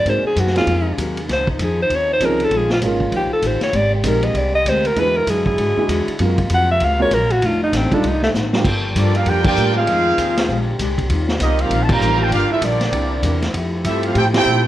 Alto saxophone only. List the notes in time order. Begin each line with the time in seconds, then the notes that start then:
Already playing: D5
0.09 C5
0.27 G#4
0.40 F#4
0.58 F4
1.33 C5
1.50 D#4
1.64 G#4
1.82 C5
1.96 C#5
2.13 C5
2.26 A#4
2.44 A4
2.57 G#4
2.73 F4
3.17 G4
3.33 A4
3.47 C5
3.64 C#5
3.76 D5
3.95 G4
4.08 A#4
4.25 D#5
4.38 D5
4.55 D#5
4.69 C5
4.87 A#4
5.00 B4
5.17 A#4
5.30 G#4
5.47 G#4
6.54 F#5
6.71 E5
6.85 F5
7.02 C#5
7.15 A#4
7.32 F#4
7.46 F4
7.64 D#4
7.76 C4
7.94 D4
8.07 D#4
8.24 A3